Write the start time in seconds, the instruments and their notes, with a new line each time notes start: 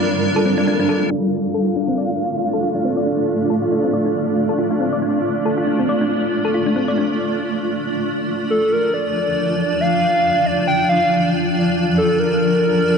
Already playing: ambient pad G3 D4 F4 A#4, synth texture F4 F5, soft synth lead D5
0.36 synth arpeggio sound A4
0.46 synth arpeggio sound C4
0.58 synth arpeggio sound D4
0.67 synth arpeggio sound D4
0.80 synth arpeggio sound D4
0.89 synth arpeggio sound A4
1.11 ambient pad A3 D4 F4 D5, synth arpeggio sound D4, synth texture F4 F5, soft synth lead F5
1.54 synth arpeggio sound A4
1.67 synth arpeggio sound F4
1.76 synth arpeggio sound D4
1.88 synth arpeggio sound C4
1.98 synth arpeggio sound D5
2.10 synth arpeggio sound D4
2.53 synth arpeggio sound A4
2.63 synth arpeggio sound F4
2.75 synth arpeggio sound D4
2.85 synth arpeggio sound C4, soft synth lead A4
2.97 synth arpeggio sound D5
3.07 synth arpeggio sound D4
3.50 synth arpeggio sound A4
3.62 synth arpeggio sound F4
3.72 synth arpeggio sound D4, soft synth lead A4
3.84 synth arpeggio sound C4
3.94 synth arpeggio sound D5
4.06 synth arpeggio sound D4
4.49 synth arpeggio sound A4
4.59 synth arpeggio sound F4
4.71 synth arpeggio sound D4
4.80 synth arpeggio sound C4
4.93 synth arpeggio sound D5
5.02 synth arpeggio sound D4
5.46 synth arpeggio sound A4
5.58 synth arpeggio sound F4
5.67 synth arpeggio sound D4
5.80 synth arpeggio sound C4
5.89 synth arpeggio sound D5
6.01 synth arpeggio sound D4
6.45 synth arpeggio sound A4
6.54 synth arpeggio sound F4
6.66 synth arpeggio sound D4
6.76 synth arpeggio sound C4
6.88 synth arpeggio sound D5
6.98 synth arpeggio sound D4
8.07 ambient pad F3 D4 F4 D5
8.50 soft synth lead A4
8.72 soft synth lead A#4
8.94 soft synth lead D5
9.81 soft synth lead F5
10.46 soft synth lead D5
10.68 soft synth lead G5
10.89 soft synth lead F5
11.98 soft synth lead A4
12.19 soft synth lead A#4